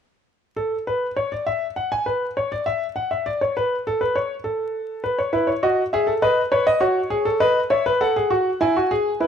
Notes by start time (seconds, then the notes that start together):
0.56 A4
0.87 B4
1.16 C#5
1.32 D5
1.47 E5
1.76 F#5
1.92 G#5
2.06 B4
2.37 C#5
2.52 D5
2.66 E5
2.96 F#5
3.11 E5
3.26 D5
3.41 C#5
3.57 B4
3.87 A4
4.01 B4
4.15 C#5
4.44 A4
5.04 B4
5.19 C#5
5.33 E4 B4
5.47 C#5
5.63 F#4 D#5
5.93 G#4 E5
6.07 A4
6.22 B4 D#5
6.52 B4 C#5
6.67 D#5
6.81 F#4 C#5
7.10 G#4
7.25 A4
7.40 B4 D#5
7.70 C#5 E5
7.86 B4
8.01 A4 F#5
8.16 G#4
8.30 F#4
8.61 E4 G#5
8.77 F#4
8.91 G#4
9.20 E4 B4